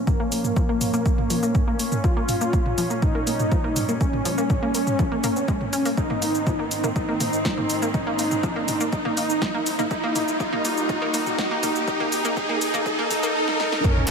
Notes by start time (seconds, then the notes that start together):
Already playing: A#2 F3 C#4, riser
0.07 A#3, kick, mid tom, shaker
0.20 A#3
0.32 A#3, open hi-hat, shaker
0.44 mid tom, shaker
0.56 F3, kick, shaker
0.69 A#3
0.81 mid tom, open hi-hat, shaker
0.94 A#3, shaker
1.06 A#3, kick, shaker
1.18 mid tom
1.30 F3, open hi-hat, shaker
1.43 A#3, shaker
1.55 kick, mid tom, shaker
1.67 A#3
1.79 A#3, open hi-hat, shaker
1.92 mid tom, shaker
2.04 F3 G3 F4, kick, shaker
2.17 A#3
2.29 mid tom, open hi-hat, shaker
2.41 A#3, shaker
2.53 A#3, kick, shaker
2.66 mid tom
2.78 F3, open hi-hat, shaker
2.90 A#3, shaker
3.02 D#4, kick, mid tom, shaker
3.15 A#3
3.27 A#3, open hi-hat, shaker
3.40 mid tom, shaker
3.52 F3, kick, shaker
3.64 A#3
3.76 mid tom, open hi-hat, shaker
3.89 A#3, shaker
4.01 A#3 C#4, kick, shaker
4.13 mid tom
4.25 F3, open hi-hat, shaker
4.38 A#3, shaker
4.50 kick, mid tom, shaker
4.62 A#3
4.75 A#3, open hi-hat, shaker
4.87 mid tom, shaker
4.99 F3, kick, shaker
5.12 A#3
5.24 A#3, mid tom, open hi-hat, shaker
5.36 C4, shaker
5.48 G#3, kick, shaker
5.61 mid tom
5.73 C#4, open hi-hat, shaker
5.85 A#3, open hi-hat, shaker
5.97 G#2 D#3 C4 D#4, kick, shaker
6.10 A#3, mid tom
6.22 A#3, open hi-hat, shaker
6.35 shaker
6.47 F3, kick, mid tom, shaker
6.59 A#3
6.71 open hi-hat, shaker
6.84 A#3, mid tom, shaker
6.96 D#4, kick, shaker
7.08 A#3
7.20 A#3, mid tom, open hi-hat, shaker
7.33 shaker
7.45 F3, kick, snare, shaker
7.58 A#3, mid tom
7.70 open hi-hat, shaker
7.82 A#3, shaker
7.94 D#4, kick, mid tom, shaker
8.07 A#3
8.19 A#3, open hi-hat, shaker
8.31 mid tom, shaker
8.43 F3, kick, shaker
8.56 A#3
8.68 mid tom, open hi-hat, shaker
8.81 A#3, shaker
8.93 D#4, kick, shaker
9.05 A#3, mid tom
9.17 A#3, open hi-hat, shaker
9.30 shaker
9.42 F3, kick, snare, mid tom, shaker
9.54 A#3
9.66 open hi-hat, shaker
9.79 A#3, mid tom, shaker
9.91 D#2 A#2 G3 D#4, kick, shaker
10.03 A#3
10.16 A#3, mid tom, open hi-hat, shaker
10.28 shaker
10.40 D#4, kick, shaker
10.53 A#3, mid tom
10.65 A#3, open hi-hat, shaker
10.77 shaker
10.89 D#4, kick, mid tom, shaker
11.02 A#3
11.14 A#3, open hi-hat, shaker
11.26 mid tom, shaker
11.38 D#4, kick, snare, shaker
11.51 A#3
11.63 A#3, mid tom, open hi-hat, shaker
11.76 shaker
11.88 C3 D#4, kick, shaker
12.00 A#3, mid tom
12.12 D#4, open hi-hat, shaker
12.25 A#3, shaker
12.37 D#4, kick, mid tom, shaker
12.49 A#3
12.61 D#4, open hi-hat, shaker
12.74 A#3, mid tom, shaker
12.86 D#4, kick, shaker
12.99 A#3
13.11 D#4, mid tom, open hi-hat, shaker
13.23 A#3, shaker
13.35 D#4
13.48 snare
13.60 D#4, snare
13.72 snare
13.84 A#3 C#4 A#4 F5, kick, sub drop, shaker
13.97 mid tom